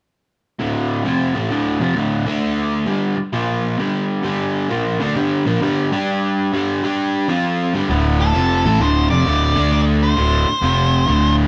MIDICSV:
0, 0, Header, 1, 6, 480
1, 0, Start_track
1, 0, Tempo, 455581
1, 636, Time_signature, 4, 2, 24, 8
1, 12090, End_track
2, 0, Start_track
2, 0, Title_t, "Lead electric guitar"
2, 0, Program_c, 0, 29
2, 8645, Note_on_c, 0, 69, 73
2, 9288, Note_on_c, 0, 72, 96
2, 9301, Note_off_c, 0, 69, 0
2, 9582, Note_off_c, 0, 72, 0
2, 9590, Note_on_c, 0, 74, 105
2, 10234, Note_off_c, 0, 74, 0
2, 10246, Note_on_c, 0, 74, 86
2, 10331, Note_off_c, 0, 74, 0
2, 10567, Note_on_c, 0, 72, 70
2, 11959, Note_off_c, 0, 72, 0
2, 12090, End_track
3, 0, Start_track
3, 0, Title_t, "Overdriven electric guitar"
3, 0, Program_c, 1, 29
3, 620, Note_on_c, 1, 38, 76
3, 626, Note_on_c, 1, 45, 86
3, 636, Note_on_c, 1, 50, 81
3, 1097, Note_off_c, 1, 38, 0
3, 1101, Note_on_c, 1, 41, 66
3, 1106, Note_off_c, 1, 45, 0
3, 1106, Note_off_c, 1, 50, 0
3, 1111, Note_on_c, 1, 53, 78
3, 1112, Note_on_c, 1, 48, 76
3, 1411, Note_off_c, 1, 41, 0
3, 1416, Note_on_c, 1, 45, 73
3, 1419, Note_off_c, 1, 48, 0
3, 1424, Note_off_c, 1, 53, 0
3, 1424, Note_on_c, 1, 52, 74
3, 1430, Note_on_c, 1, 57, 85
3, 1575, Note_off_c, 1, 45, 0
3, 1580, Note_on_c, 1, 38, 78
3, 1584, Note_off_c, 1, 52, 0
3, 1587, Note_off_c, 1, 57, 0
3, 1588, Note_on_c, 1, 45, 92
3, 1591, Note_on_c, 1, 50, 85
3, 1892, Note_off_c, 1, 38, 0
3, 1896, Note_on_c, 1, 41, 65
3, 1898, Note_off_c, 1, 45, 0
3, 1902, Note_on_c, 1, 48, 79
3, 1905, Note_off_c, 1, 50, 0
3, 1909, Note_on_c, 1, 53, 78
3, 2050, Note_off_c, 1, 41, 0
3, 2054, Note_on_c, 1, 38, 65
3, 2061, Note_off_c, 1, 48, 0
3, 2065, Note_off_c, 1, 53, 0
3, 2065, Note_on_c, 1, 45, 80
3, 2069, Note_on_c, 1, 50, 78
3, 2368, Note_off_c, 1, 50, 0
3, 2376, Note_off_c, 1, 38, 0
3, 2376, Note_off_c, 1, 45, 0
3, 2380, Note_on_c, 1, 50, 87
3, 2389, Note_on_c, 1, 57, 86
3, 2398, Note_on_c, 1, 62, 78
3, 3018, Note_off_c, 1, 50, 0
3, 3022, Note_on_c, 1, 43, 72
3, 3028, Note_off_c, 1, 57, 0
3, 3030, Note_on_c, 1, 50, 75
3, 3032, Note_off_c, 1, 62, 0
3, 3034, Note_on_c, 1, 55, 82
3, 3330, Note_off_c, 1, 43, 0
3, 3345, Note_off_c, 1, 50, 0
3, 3346, Note_off_c, 1, 55, 0
3, 3502, Note_on_c, 1, 46, 86
3, 3505, Note_on_c, 1, 53, 94
3, 3510, Note_on_c, 1, 58, 80
3, 3977, Note_off_c, 1, 46, 0
3, 3981, Note_on_c, 1, 43, 64
3, 3984, Note_off_c, 1, 53, 0
3, 3988, Note_on_c, 1, 50, 65
3, 3989, Note_off_c, 1, 58, 0
3, 3997, Note_on_c, 1, 55, 66
3, 4441, Note_off_c, 1, 43, 0
3, 4450, Note_off_c, 1, 50, 0
3, 4453, Note_off_c, 1, 55, 0
3, 4454, Note_on_c, 1, 43, 85
3, 4462, Note_on_c, 1, 50, 85
3, 4466, Note_on_c, 1, 55, 92
3, 4939, Note_off_c, 1, 43, 0
3, 4943, Note_on_c, 1, 46, 79
3, 4946, Note_off_c, 1, 50, 0
3, 4947, Note_off_c, 1, 55, 0
3, 4953, Note_on_c, 1, 53, 74
3, 4954, Note_on_c, 1, 58, 76
3, 5262, Note_off_c, 1, 46, 0
3, 5264, Note_off_c, 1, 53, 0
3, 5267, Note_off_c, 1, 58, 0
3, 5268, Note_on_c, 1, 50, 78
3, 5278, Note_on_c, 1, 57, 69
3, 5284, Note_on_c, 1, 62, 79
3, 5424, Note_off_c, 1, 50, 0
3, 5425, Note_on_c, 1, 43, 79
3, 5433, Note_off_c, 1, 57, 0
3, 5436, Note_off_c, 1, 62, 0
3, 5436, Note_on_c, 1, 50, 82
3, 5438, Note_on_c, 1, 55, 81
3, 5743, Note_off_c, 1, 43, 0
3, 5749, Note_off_c, 1, 50, 0
3, 5750, Note_off_c, 1, 55, 0
3, 5755, Note_on_c, 1, 46, 73
3, 5758, Note_on_c, 1, 53, 78
3, 5767, Note_on_c, 1, 58, 86
3, 5908, Note_off_c, 1, 46, 0
3, 5912, Note_off_c, 1, 53, 0
3, 5912, Note_on_c, 1, 43, 66
3, 5916, Note_on_c, 1, 50, 70
3, 5918, Note_off_c, 1, 58, 0
3, 5925, Note_on_c, 1, 55, 90
3, 6227, Note_off_c, 1, 43, 0
3, 6227, Note_off_c, 1, 55, 0
3, 6229, Note_off_c, 1, 50, 0
3, 6240, Note_on_c, 1, 55, 84
3, 6249, Note_on_c, 1, 62, 76
3, 6249, Note_on_c, 1, 67, 92
3, 6874, Note_on_c, 1, 43, 70
3, 6875, Note_off_c, 1, 55, 0
3, 6877, Note_on_c, 1, 50, 76
3, 6879, Note_off_c, 1, 62, 0
3, 6879, Note_off_c, 1, 67, 0
3, 6886, Note_on_c, 1, 55, 86
3, 7188, Note_off_c, 1, 43, 0
3, 7190, Note_off_c, 1, 50, 0
3, 7194, Note_off_c, 1, 55, 0
3, 7206, Note_on_c, 1, 55, 78
3, 7211, Note_on_c, 1, 62, 78
3, 7214, Note_on_c, 1, 67, 87
3, 7674, Note_off_c, 1, 55, 0
3, 7676, Note_off_c, 1, 62, 0
3, 7677, Note_on_c, 1, 53, 71
3, 7678, Note_off_c, 1, 67, 0
3, 7687, Note_on_c, 1, 60, 75
3, 7690, Note_on_c, 1, 65, 87
3, 8149, Note_off_c, 1, 53, 0
3, 8150, Note_on_c, 1, 43, 84
3, 8154, Note_off_c, 1, 60, 0
3, 8156, Note_off_c, 1, 65, 0
3, 8161, Note_on_c, 1, 50, 83
3, 8165, Note_on_c, 1, 55, 99
3, 8310, Note_off_c, 1, 43, 0
3, 8314, Note_on_c, 1, 38, 93
3, 8316, Note_off_c, 1, 50, 0
3, 8318, Note_off_c, 1, 55, 0
3, 8321, Note_on_c, 1, 45, 95
3, 8329, Note_on_c, 1, 50, 90
3, 8780, Note_off_c, 1, 38, 0
3, 8784, Note_on_c, 1, 41, 77
3, 8786, Note_off_c, 1, 45, 0
3, 8790, Note_on_c, 1, 48, 78
3, 8795, Note_off_c, 1, 50, 0
3, 8800, Note_on_c, 1, 53, 86
3, 9103, Note_off_c, 1, 41, 0
3, 9106, Note_off_c, 1, 48, 0
3, 9110, Note_off_c, 1, 53, 0
3, 9116, Note_on_c, 1, 45, 80
3, 9120, Note_on_c, 1, 52, 86
3, 9129, Note_on_c, 1, 57, 79
3, 9266, Note_off_c, 1, 45, 0
3, 9271, Note_on_c, 1, 38, 92
3, 9273, Note_off_c, 1, 57, 0
3, 9274, Note_off_c, 1, 52, 0
3, 9278, Note_on_c, 1, 45, 83
3, 9278, Note_on_c, 1, 50, 89
3, 9586, Note_off_c, 1, 38, 0
3, 9589, Note_off_c, 1, 45, 0
3, 9589, Note_off_c, 1, 50, 0
3, 9594, Note_on_c, 1, 41, 80
3, 9597, Note_on_c, 1, 48, 78
3, 9600, Note_on_c, 1, 53, 81
3, 9750, Note_off_c, 1, 41, 0
3, 9753, Note_off_c, 1, 48, 0
3, 9754, Note_off_c, 1, 53, 0
3, 9755, Note_on_c, 1, 38, 73
3, 9763, Note_on_c, 1, 45, 81
3, 9766, Note_on_c, 1, 50, 100
3, 10050, Note_off_c, 1, 50, 0
3, 10059, Note_off_c, 1, 45, 0
3, 10063, Note_on_c, 1, 50, 92
3, 10067, Note_off_c, 1, 38, 0
3, 10073, Note_on_c, 1, 57, 103
3, 10079, Note_on_c, 1, 62, 101
3, 10705, Note_off_c, 1, 50, 0
3, 10710, Note_off_c, 1, 57, 0
3, 10710, Note_on_c, 1, 38, 71
3, 10710, Note_on_c, 1, 45, 85
3, 10713, Note_off_c, 1, 62, 0
3, 10717, Note_on_c, 1, 50, 90
3, 11014, Note_off_c, 1, 38, 0
3, 11024, Note_off_c, 1, 45, 0
3, 11028, Note_off_c, 1, 50, 0
3, 11187, Note_on_c, 1, 41, 89
3, 11200, Note_on_c, 1, 48, 92
3, 11203, Note_on_c, 1, 53, 102
3, 11662, Note_off_c, 1, 41, 0
3, 11666, Note_on_c, 1, 38, 79
3, 11667, Note_off_c, 1, 48, 0
3, 11671, Note_on_c, 1, 45, 80
3, 11674, Note_off_c, 1, 53, 0
3, 11680, Note_on_c, 1, 50, 88
3, 12090, Note_off_c, 1, 38, 0
3, 12090, Note_off_c, 1, 45, 0
3, 12090, Note_off_c, 1, 50, 0
3, 12090, End_track
4, 0, Start_track
4, 0, Title_t, "Picked electric bass"
4, 0, Program_c, 2, 34
4, 8318, Note_on_c, 2, 26, 87
4, 8765, Note_off_c, 2, 26, 0
4, 8801, Note_on_c, 2, 29, 78
4, 9098, Note_off_c, 2, 29, 0
4, 9121, Note_on_c, 2, 33, 80
4, 9266, Note_off_c, 2, 33, 0
4, 9273, Note_on_c, 2, 26, 77
4, 9574, Note_off_c, 2, 26, 0
4, 9602, Note_on_c, 2, 29, 71
4, 9749, Note_off_c, 2, 29, 0
4, 9757, Note_on_c, 2, 26, 90
4, 10056, Note_off_c, 2, 26, 0
4, 10082, Note_on_c, 2, 38, 84
4, 10677, Note_off_c, 2, 38, 0
4, 10728, Note_on_c, 2, 26, 76
4, 11021, Note_off_c, 2, 26, 0
4, 11192, Note_on_c, 2, 29, 81
4, 11640, Note_off_c, 2, 29, 0
4, 11670, Note_on_c, 2, 26, 84
4, 12090, Note_off_c, 2, 26, 0
4, 12090, End_track
5, 0, Start_track
5, 0, Title_t, "Muted overdriven electric guitar strokes"
5, 3343, Note_on_c, 9, 29, 47
5, 3448, Note_off_c, 9, 29, 0
5, 11026, Note_on_c, 9, 29, 58
5, 11132, Note_off_c, 9, 29, 0
5, 12090, End_track
6, 0, Start_track
6, 0, Title_t, "Muted picked electric bass strokes"
6, 11036, Note_on_c, 9, 29, 38
6, 11141, Note_off_c, 9, 29, 0
6, 12090, End_track
0, 0, End_of_file